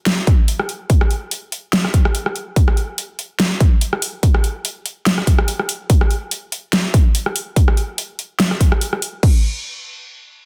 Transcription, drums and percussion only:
0.06 snare, closed hi-hat
0.27 kick, closed hi-hat
0.48 closed hi-hat
0.59 cross-stick
0.69 closed hi-hat
0.90 kick, closed hi-hat
1.01 cross-stick
1.11 closed hi-hat
1.31 closed hi-hat
1.52 closed hi-hat
1.73 snare, closed hi-hat
1.85 cross-stick
1.94 kick, closed hi-hat
2.05 cross-stick
2.15 closed hi-hat
2.26 cross-stick
2.36 closed hi-hat
2.56 kick, closed hi-hat
2.68 cross-stick
2.77 closed hi-hat
2.98 closed hi-hat
3.19 closed hi-hat
3.40 snare, closed hi-hat
3.60 kick, closed hi-hat
3.81 closed hi-hat
3.93 cross-stick
4.02 open hi-hat
4.23 kick, closed hi-hat
4.34 cross-stick
4.44 closed hi-hat
4.65 closed hi-hat
4.86 closed hi-hat
5.06 snare, closed hi-hat
5.18 cross-stick
5.27 kick, closed hi-hat
5.39 cross-stick
5.48 closed hi-hat
5.59 cross-stick
5.69 open hi-hat
5.90 kick, closed hi-hat
6.01 cross-stick
6.11 closed hi-hat
6.31 closed hi-hat
6.52 closed hi-hat
6.73 snare, closed hi-hat
6.94 kick, closed hi-hat
7.15 closed hi-hat
7.26 cross-stick
7.36 open hi-hat
7.56 kick, closed hi-hat
7.68 cross-stick
7.77 closed hi-hat
7.98 closed hi-hat
8.19 closed hi-hat
8.40 snare, closed hi-hat
8.51 cross-stick
8.61 kick, closed hi-hat
8.72 cross-stick
8.81 closed hi-hat
8.93 cross-stick
9.02 open hi-hat
9.23 kick, crash

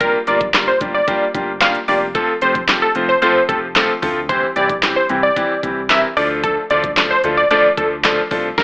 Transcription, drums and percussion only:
0.01 kick, closed hi-hat
0.27 closed hi-hat
0.41 kick, closed hi-hat
0.54 snare, clap, closed hi-hat
0.81 kick, closed hi-hat
1.08 kick, closed hi-hat
1.35 kick, closed hi-hat
1.61 snare, clap, closed hi-hat
1.75 closed hi-hat
1.88 open hi-hat
2.15 kick, closed hi-hat
2.42 closed hi-hat
2.55 kick, closed hi-hat
2.68 snare, clap, closed hi-hat
2.95 closed hi-hat
3.22 closed hi-hat
3.49 kick, closed hi-hat
3.76 snare, clap, closed hi-hat
4.03 kick, open hi-hat
4.29 kick, closed hi-hat
4.56 closed hi-hat
4.70 kick, closed hi-hat
4.83 snare, clap, closed hi-hat
5.09 closed hi-hat
5.37 kick, closed hi-hat
5.63 kick, closed hi-hat
5.90 snare, clap, closed hi-hat
6.17 open hi-hat
6.44 kick, closed hi-hat
6.70 closed hi-hat
6.84 kick, closed hi-hat
6.97 snare, clap, closed hi-hat
7.24 closed hi-hat
7.51 closed hi-hat
7.77 kick, closed hi-hat
8.04 snare, clap, closed hi-hat
8.31 kick, open hi-hat
8.58 kick, snare

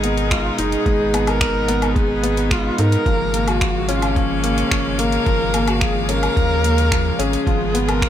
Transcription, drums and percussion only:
0.04 closed hi-hat
0.18 closed hi-hat
0.31 finger snap, kick, closed hi-hat
0.58 closed hi-hat
0.72 closed hi-hat
0.86 kick, closed hi-hat
1.14 closed hi-hat, low woodblock
1.27 closed hi-hat, low woodblock
1.41 finger snap, kick, closed hi-hat
1.68 closed hi-hat
1.82 closed hi-hat, low woodblock
1.96 kick, closed hi-hat
2.24 closed hi-hat
2.37 closed hi-hat
2.51 finger snap, kick, closed hi-hat
2.78 closed hi-hat
2.92 closed hi-hat
3.06 kick, closed hi-hat
3.34 closed hi-hat
3.48 closed hi-hat, low woodblock
3.61 finger snap, kick, closed hi-hat
3.89 closed hi-hat
4.02 closed hi-hat, low woodblock
4.16 kick, closed hi-hat
4.44 closed hi-hat
4.58 closed hi-hat
4.71 finger snap, kick, closed hi-hat
4.99 closed hi-hat
5.12 closed hi-hat
5.26 kick, closed hi-hat
5.54 closed hi-hat, low woodblock
5.68 closed hi-hat, low woodblock
5.81 finger snap, kick, closed hi-hat
6.09 closed hi-hat
6.23 closed hi-hat, low woodblock
6.37 kick, closed hi-hat
6.64 closed hi-hat
6.78 closed hi-hat
6.92 finger snap, kick, closed hi-hat
7.20 closed hi-hat
7.33 closed hi-hat
7.47 kick, closed hi-hat
7.75 closed hi-hat
7.89 closed hi-hat, low woodblock
8.02 finger snap, kick, closed hi-hat

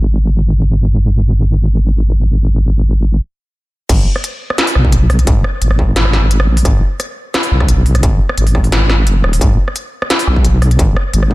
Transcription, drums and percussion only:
3.89 kick, closed hi-hat, crash
4.16 cross-stick
4.24 closed hi-hat
4.50 cross-stick
4.58 snare, closed hi-hat
4.67 open hi-hat
4.75 cross-stick
4.85 kick
4.92 closed hi-hat
5.10 cross-stick, open hi-hat
5.19 closed hi-hat
5.27 kick, closed hi-hat
5.44 cross-stick
5.62 closed hi-hat
5.71 cross-stick
5.79 kick
5.96 snare, closed hi-hat
6.05 cross-stick
6.13 snare
6.31 closed hi-hat
6.40 cross-stick
6.57 open hi-hat
6.65 kick, cross-stick, closed hi-hat
7.00 cross-stick, closed hi-hat
7.34 cross-stick, snare, closed hi-hat
7.43 open hi-hat
7.60 kick, cross-stick
7.68 closed hi-hat
7.86 open hi-hat
7.95 cross-stick, closed hi-hat
8.03 kick, closed hi-hat
8.29 cross-stick
8.38 closed hi-hat
8.47 open hi-hat
8.55 kick, cross-stick
8.64 open hi-hat
8.72 snare, closed hi-hat
8.90 cross-stick, snare
9.07 closed hi-hat
9.24 cross-stick
9.33 open hi-hat
9.41 kick, closed hi-hat
9.68 cross-stick
9.76 closed hi-hat
10.02 cross-stick
10.10 snare, closed hi-hat
10.19 open hi-hat
10.27 cross-stick
10.36 kick
10.45 closed hi-hat
10.62 cross-stick, open hi-hat
10.71 closed hi-hat
10.79 kick, closed hi-hat
10.96 cross-stick
11.14 closed hi-hat
11.23 cross-stick
11.31 kick

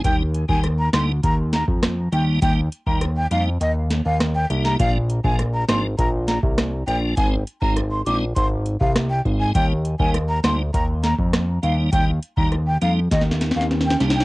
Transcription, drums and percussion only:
0.04 kick, closed hi-hat
0.34 closed hi-hat
0.49 kick
0.64 cross-stick, closed hi-hat
0.93 cross-stick, snare, closed hi-hat
1.23 kick, closed hi-hat
1.53 snare, closed hi-hat
1.68 kick
1.83 cross-stick, snare, closed hi-hat
2.12 closed hi-hat
2.42 kick, closed hi-hat
2.72 closed hi-hat
2.87 kick
3.01 cross-stick, closed hi-hat
3.31 closed hi-hat
3.61 closed hi-hat
3.90 snare, closed hi-hat
4.20 cross-stick, snare, closed hi-hat
4.50 closed hi-hat
4.65 snare
4.80 kick, closed hi-hat
5.10 closed hi-hat
5.24 kick
5.39 cross-stick, closed hi-hat
5.69 cross-stick, snare, closed hi-hat
5.99 kick, closed hi-hat
6.28 snare, closed hi-hat
6.43 kick
6.58 cross-stick, snare, closed hi-hat
6.88 closed hi-hat
7.17 kick, closed hi-hat
7.47 closed hi-hat
7.62 kick
7.77 cross-stick, closed hi-hat
8.06 closed hi-hat
8.36 kick, closed hi-hat
8.66 closed hi-hat
8.81 kick
8.96 cross-stick, snare, closed hi-hat
9.25 kick, closed hi-hat
9.55 kick, closed hi-hat
9.85 closed hi-hat
10.00 kick
10.14 cross-stick, closed hi-hat
10.44 cross-stick, snare, closed hi-hat
10.74 kick, closed hi-hat
11.03 snare, closed hi-hat
11.18 kick
11.33 cross-stick, snare, closed hi-hat
11.63 closed hi-hat
11.93 kick, closed hi-hat
12.22 closed hi-hat
12.37 kick
12.52 cross-stick, closed hi-hat
12.82 closed hi-hat
13.11 kick, snare, closed hi-hat
13.21 snare
13.31 snare
13.41 snare, closed hi-hat
13.51 snare
13.61 snare
13.71 snare, closed hi-hat
13.81 snare
13.91 snare
14.00 snare, closed hi-hat
14.10 snare
14.20 snare

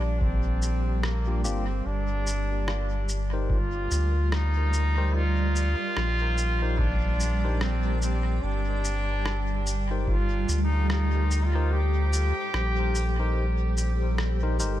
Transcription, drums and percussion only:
0.21 kick
0.62 shaker
1.03 cross-stick
1.45 shaker
2.27 shaker
2.68 cross-stick
3.09 shaker
3.50 kick
3.91 shaker
4.32 cross-stick
4.73 shaker
5.56 shaker
5.97 cross-stick
6.38 shaker
6.79 kick
7.20 shaker
7.61 cross-stick
8.02 shaker
8.84 shaker
9.26 cross-stick
9.67 shaker
10.07 kick
10.49 shaker
10.90 cross-stick
11.31 shaker
12.13 shaker
12.54 cross-stick
12.95 shaker
13.77 shaker
14.18 cross-stick
14.60 shaker

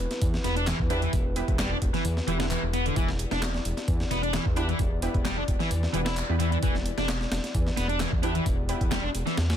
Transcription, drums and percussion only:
0.11 snare, closed hi-hat
0.22 kick, closed hi-hat
0.34 snare
0.44 snare, closed hi-hat
0.57 closed hi-hat
0.67 snare, clap, closed hi-hat
0.79 kick
0.90 closed hi-hat
1.02 closed hi-hat
1.13 kick, closed hi-hat
1.36 closed hi-hat
1.48 kick, closed hi-hat
1.59 snare, clap, closed hi-hat
1.82 kick, closed hi-hat
1.94 snare, closed hi-hat
2.05 closed hi-hat
2.17 snare
2.28 closed hi-hat
2.40 snare, closed hi-hat
2.51 clap, closed hi-hat
2.73 closed hi-hat
2.86 closed hi-hat
2.96 kick, closed hi-hat
3.08 snare
3.19 closed hi-hat
3.31 snare, closed hi-hat
3.42 snare, clap, closed hi-hat
3.54 snare
3.65 closed hi-hat
3.77 snare, closed hi-hat
3.88 kick, closed hi-hat
4.00 snare
4.11 snare, closed hi-hat
4.23 closed hi-hat
4.34 snare, clap, closed hi-hat
4.46 kick
4.56 closed hi-hat
4.69 closed hi-hat
4.79 kick, closed hi-hat
5.02 closed hi-hat
5.14 kick, closed hi-hat
5.25 snare, clap, closed hi-hat
5.48 kick, closed hi-hat
5.60 snare, closed hi-hat
5.71 closed hi-hat
5.83 snare
5.94 closed hi-hat
6.06 snare, closed hi-hat
6.17 clap, closed hi-hat
6.40 closed hi-hat
6.52 closed hi-hat
6.63 kick, closed hi-hat
6.75 snare
6.86 closed hi-hat
6.98 snare, closed hi-hat
7.08 snare, clap, closed hi-hat
7.21 snare
7.32 snare, closed hi-hat
7.44 snare, closed hi-hat
7.55 kick, closed hi-hat
7.67 snare
7.77 snare, closed hi-hat
7.89 closed hi-hat
8.00 snare, clap, closed hi-hat
8.12 kick
8.23 closed hi-hat
8.35 closed hi-hat
8.46 kick, closed hi-hat
8.69 closed hi-hat
8.81 kick, closed hi-hat
8.92 snare, clap, closed hi-hat
9.15 closed hi-hat
9.27 snare, closed hi-hat
9.37 snare, closed hi-hat
9.50 snare, closed hi-hat

